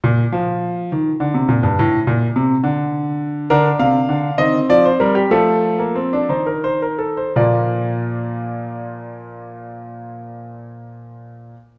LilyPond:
<<
  \new Staff \with { instrumentName = "Grand piano" } { \time 6/8 \key bes \major \tempo 4. = 63 << { bes,8 f4 ees8 d16 c16 bes,16 g,16 | a,8 bes,8 c8 d4. | bes'8 f''4 ees''8 d''16 c''16 bes'16 g'16 | a'4. c''16 bes'16 c''16 bes'16 a'16 c''16 |
<f bes d''>2.~ | <f bes d''>2. | } \\ { r2. | r2. | d'4. c'4. | a8. bes16 c'16 d'16 ees'4. |
f'2.~ | f'2. | } >> }
  \new Staff \with { instrumentName = "Grand piano" } { \clef bass \time 6/8 \key bes \major r2. | r2. | d8 c8 d8 ees8 f8 g8 | f4. ees4. |
bes,2.~ | bes,2. | }
>>